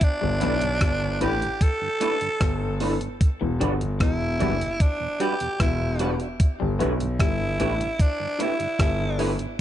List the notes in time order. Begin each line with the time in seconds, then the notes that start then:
0.01 D4, kick, closed hi-hat
0.21 G1 G2 D3 G3
0.41 B1 A3 B3 D4 E4 A4 B4, closed hi-hat
0.61 G2 D3, closed hi-hat
0.80 G1 G3, kick, cross-stick, closed hi-hat
1.01 G2 D3
1.20 A1 A3 B3 D4 E4 G4 A4 B4, closed hi-hat
1.41 G2 D3, closed hi-hat
1.61 A4, kick, closed hi-hat
1.81 G2 D3
2.00 A3 B3 D4 E4 A4 B4, closed hi-hat
2.21 G2 D3, closed hi-hat
2.41 G1 G3, kick, cross-stick, closed hi-hat
2.61 G2 D3
2.80 A3 B3 D4 E4 A4 B4, open hi-hat
3.01 G2 D3, closed hi-hat
3.21 kick, closed hi-hat
3.41 E1 E2 B2 E3
3.60 G1 G3 D4 F#4 G4 B4, closed hi-hat
3.81 E2 B2, closed hi-hat
4.00 E1 E3 E4, kick, cross-stick, closed hi-hat
4.21 E2 B2
4.40 F#1 F#3 G3 D4 F#4 G4 B4, closed hi-hat
4.61 E2 B2, closed hi-hat
4.80 D4, kick, closed hi-hat
5.00 E2 B2
5.20 G3 D4 F#4 G4 B4, closed hi-hat
5.40 E2 B2, closed hi-hat
5.60 E1 E3 E4, kick, cross-stick, closed hi-hat
5.80 E2 B2
5.99 G3 D4 F#4 G4 B4, closed hi-hat
6.20 D4 F#4, closed hi-hat
6.40 kick, closed hi-hat
6.60 G1 G2 D3 G3
6.79 B1 A3 B3 D4 E4 G4 A4 B4, closed hi-hat
7.00 G2 D3, closed hi-hat
7.20 G1 G3 E4, kick, cross-stick, closed hi-hat
7.40 G2 D3
7.59 A1 A3 B3 D4 E4 G4 A4 B4, closed hi-hat
7.80 G2 D3, closed hi-hat
8.00 D4, kick, closed hi-hat
8.20 G2 D3
8.39 A3 B3 D4 E4 G4 A4 B4, closed hi-hat
8.60 G2 D3, closed hi-hat
8.79 G1 G3 E4, kick, cross-stick, closed hi-hat
8.99 G2 D3
9.19 A3 B3 D4 E4 G4 A4 B4, open hi-hat
9.39 G2 D3, closed hi-hat